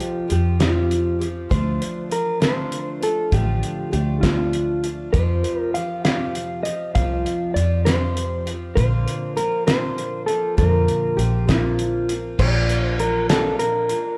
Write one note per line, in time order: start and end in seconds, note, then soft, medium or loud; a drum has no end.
0.00 0.29 F2 medium
0.00 0.29 C3 medium
0.00 0.27 F3 medium
0.00 0.28 C4 medium
0.00 0.29 F4 medium
0.00 0.29 G4 medium
0.00 0.31 G4 medium
0.00 closed hi-hat soft
0.28 1.48 F2 medium
0.28 0.59 F3 medium
0.28 0.59 C4 medium
0.28 0.59 F4 medium
0.28 0.58 G4 medium
0.28 closed hi-hat medium
0.32 0.62 G4 medium
0.59 1.21 F2 medium
0.59 1.21 C3 medium
0.59 1.21 F3 medium
0.59 1.19 C4 medium
0.59 1.20 F4 medium
0.59 1.25 F4 medium
0.59 1.18 G4 medium
0.59 snare loud
0.59 closed hi-hat medium
0.91 closed hi-hat medium
1.19 1.49 F3 soft
1.19 1.50 C4 soft
1.19 1.50 F4 soft
1.19 1.50 G4 soft
1.19 closed hi-hat medium
1.49 1.79 D2 medium
1.49 2.11 D3 medium
1.49 2.09 F3 medium
1.49 2.11 A3 medium
1.49 2.10 D4 medium
1.49 2.11 F4 medium
1.49 2.12 C5 medium
1.49 kick loud
1.49 closed hi-hat medium
1.82 closed hi-hat medium
2.09 2.40 F3 medium
2.09 2.39 D4 medium
2.09 2.39 F4 medium
2.09 2.43 A#4 medium
2.09 closed hi-hat medium
2.40 3.02 D3 medium
2.40 3.31 F3 medium
2.40 3.02 A3 medium
2.40 3.01 D4 medium
2.40 3.00 F4 medium
2.40 3.03 C5 medium
2.40 snare loud
2.40 closed hi-hat medium
2.72 closed hi-hat medium
3.01 3.31 A3 soft
3.01 3.32 D4 soft
3.01 3.32 F4 soft
3.01 3.34 A4 medium
3.01 closed hi-hat medium
3.31 3.61 A1 medium
3.31 3.92 D3 medium
3.31 3.91 F3 medium
3.31 3.91 A3 medium
3.31 3.92 D4 medium
3.31 3.93 F4 medium
3.31 3.92 G4 medium
3.31 kick loud
3.31 closed hi-hat medium
3.63 closed hi-hat medium
3.91 5.10 D2 medium
3.91 4.22 F3 medium
3.91 4.22 A3 medium
3.91 4.22 D4 medium
3.91 4.22 F4 medium
3.91 4.21 G4 medium
3.91 closed hi-hat medium
4.21 4.84 D3 medium
4.21 5.13 F3 medium
4.21 4.84 A3 medium
4.21 4.82 D4 medium
4.21 4.86 F4 medium
4.21 4.82 F4 medium
4.21 kick medium
4.21 snare loud
4.21 closed hi-hat medium
4.53 closed hi-hat medium
4.83 5.14 A3 soft
4.83 5.14 D4 soft
4.83 5.13 F4 soft
4.83 closed hi-hat medium
5.13 5.74 F2 medium
5.13 5.42 F2 medium
5.13 5.74 C3 medium
5.13 5.74 F3 medium
5.13 5.75 C4 medium
5.13 5.76 F4 medium
5.13 5.75 G4 medium
5.13 5.61 C5 medium
5.13 kick medium
5.13 closed hi-hat medium
5.44 closed hi-hat medium
5.61 5.74 A#4 medium
5.74 6.04 F3 medium
5.74 6.04 C4 medium
5.74 6.04 F4 medium
5.74 6.03 G4 medium
5.74 6.04 F5 medium
5.74 closed hi-hat medium
6.04 6.66 F2 medium
6.04 6.66 C3 medium
6.04 6.67 F3 medium
6.04 6.66 C4 medium
6.04 6.65 F4 medium
6.04 6.64 G4 medium
6.04 6.63 F5 medium
6.04 snare loud
6.04 closed hi-hat medium
6.35 closed hi-hat medium
6.63 6.95 C4 soft
6.63 6.95 F4 soft
6.63 6.95 G4 soft
6.63 6.95 D#5 medium
6.63 closed hi-hat medium
6.68 6.95 F3 soft
6.95 7.24 C2 medium
6.95 7.56 F2 medium
6.95 7.56 C3 medium
6.95 7.56 F3 medium
6.95 7.57 C4 medium
6.95 7.58 F4 medium
6.95 7.57 G4 medium
6.95 7.54 F5 medium
6.95 kick loud
6.95 closed hi-hat medium
7.26 closed hi-hat medium
7.54 8.73 F2 medium
7.54 7.86 F3 medium
7.54 7.86 C4 medium
7.54 7.85 D5 medium
7.54 closed hi-hat medium
7.58 7.85 F4 medium
7.58 7.85 G4 medium
7.85 8.47 F2 medium
7.85 8.47 C3 medium
7.85 8.48 F3 medium
7.85 8.47 C4 medium
7.85 8.47 F4 medium
7.85 8.44 G4 medium
7.85 8.50 C5 medium
7.85 snare loud
7.85 closed hi-hat medium
8.17 closed hi-hat medium
8.46 8.76 F3 soft
8.46 8.77 C4 soft
8.46 8.77 F4 soft
8.46 8.76 G4 soft
8.46 closed hi-hat medium
8.75 9.05 A#1 medium
8.75 9.37 A#2 medium
8.75 9.37 D3 medium
8.75 9.35 F3 medium
8.75 9.37 A#3 medium
8.75 9.36 C4 medium
8.75 9.38 F4 medium
8.75 9.36 C5 medium
8.75 kick loud
8.75 closed hi-hat medium
9.08 closed hi-hat medium
9.36 9.67 F3 medium
9.36 9.66 A#3 medium
9.36 9.66 C4 medium
9.36 9.65 F4 medium
9.36 9.65 A#4 medium
9.36 closed hi-hat medium
9.67 10.28 A#2 medium
9.67 10.28 D3 medium
9.67 10.29 F3 medium
9.67 10.28 A#3 medium
9.67 10.26 C4 medium
9.67 10.27 F4 medium
9.67 10.26 C5 medium
9.67 snare loud
9.67 closed hi-hat medium
9.98 closed hi-hat medium
10.26 10.57 F3 soft
10.26 10.57 A#3 soft
10.26 10.57 C4 soft
10.26 10.57 F4 soft
10.26 10.55 A4 medium
10.26 closed hi-hat soft
10.57 10.87 F2 loud
10.57 11.18 A#2 medium
10.57 11.18 D3 medium
10.57 11.16 F3 medium
10.57 11.17 A#3 medium
10.57 11.18 C4 medium
10.57 11.19 F4 medium
10.57 11.20 A#4 medium
10.57 kick loud
10.57 closed hi-hat medium
10.88 closed hi-hat medium
11.17 12.35 A#1 medium
11.17 11.48 F3 medium
11.17 11.47 A#3 medium
11.17 11.46 C4 medium
11.17 11.46 F4 medium
11.17 11.46 G4 medium
11.17 closed hi-hat medium
11.47 12.09 A#2 soft
11.47 12.09 D3 medium
11.47 12.09 F3 medium
11.47 12.09 A#3 medium
11.47 12.08 C4 medium
11.47 12.07 F4 medium
11.47 12.12 F4 medium
11.47 kick medium
11.47 snare loud
11.47 closed hi-hat medium
11.79 closed hi-hat medium
12.08 12.38 F3 soft
12.08 12.38 A#3 soft
12.08 12.39 C4 soft
12.08 12.39 F4 soft
12.08 closed hi-hat medium
12.38 13.56 A#1 medium
12.38 12.99 A#2 medium
12.38 12.98 F3 medium
12.38 13.00 A#3 medium
12.38 12.99 D4 medium
12.38 13.00 F4 medium
12.38 12.87 D5 medium
12.38 kick loud
12.38 crash loud
12.69 closed hi-hat medium
12.87 13.00 C5 medium
12.99 13.29 F3 medium
12.99 13.29 A#3 medium
12.99 13.29 D4 medium
12.99 13.28 F4 medium
12.99 13.29 A#4 medium
12.99 closed hi-hat medium
13.29 13.90 A#2 medium
13.29 13.90 F3 medium
13.29 13.91 A#3 medium
13.29 13.89 D4 medium
13.29 13.88 F4 medium
13.29 13.58 A4 medium
13.29 snare loud
13.29 closed hi-hat medium
13.59 14.18 A#4 medium
13.59 closed hi-hat medium
13.89 14.18 A#3 soft
13.89 14.18 D4 soft
13.89 14.18 F4 soft
13.89 closed hi-hat medium